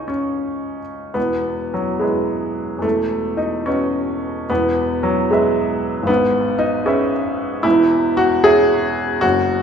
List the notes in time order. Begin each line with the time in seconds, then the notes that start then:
Already playing: C#2 G#3 C#4 D#4 E4 C#5 G#5 C#6
0.08 C#4
1.14 E1 E2 B3
1.74 F#3
1.99 G#3 E4 G#4 B4
2.78 E2 A3
2.83 E1
3.37 D#4
3.66 C#4 F#4 B4 D#5
4.50 E1 E2 B3
5.03 F#3
5.31 G#3 G#4 B4 E5
6.03 G#1
6.07 G#2 B3
6.59 D#4
6.86 C#4 G#4 B4 E5
7.63 E1 E2 E4
8.17 F#4
8.44 G#4 C#5 E5
9.21 F#1 F#2 F#4